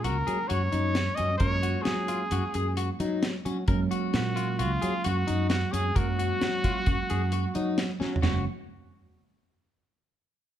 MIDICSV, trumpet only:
0, 0, Header, 1, 2, 480
1, 0, Start_track
1, 0, Key_signature, 6, "major"
1, 0, Tempo, 455063
1, 1485, Time_signature, 5, 2, 24, 8
1, 11178, End_track
2, 0, Start_track
2, 0, Title_t, "Trumpet"
2, 0, Program_c, 0, 56
2, 42, Note_on_c, 0, 70, 73
2, 507, Note_on_c, 0, 73, 82
2, 523, Note_off_c, 0, 70, 0
2, 1215, Note_on_c, 0, 75, 83
2, 1231, Note_off_c, 0, 73, 0
2, 1445, Note_off_c, 0, 75, 0
2, 1452, Note_on_c, 0, 73, 89
2, 1924, Note_on_c, 0, 68, 74
2, 1940, Note_off_c, 0, 73, 0
2, 2905, Note_off_c, 0, 68, 0
2, 4366, Note_on_c, 0, 66, 78
2, 4837, Note_on_c, 0, 65, 78
2, 4853, Note_off_c, 0, 66, 0
2, 5321, Note_on_c, 0, 66, 82
2, 5337, Note_off_c, 0, 65, 0
2, 5789, Note_off_c, 0, 66, 0
2, 5795, Note_on_c, 0, 66, 82
2, 6038, Note_on_c, 0, 68, 87
2, 6054, Note_off_c, 0, 66, 0
2, 6293, Note_on_c, 0, 66, 91
2, 6308, Note_off_c, 0, 68, 0
2, 8209, Note_off_c, 0, 66, 0
2, 11178, End_track
0, 0, End_of_file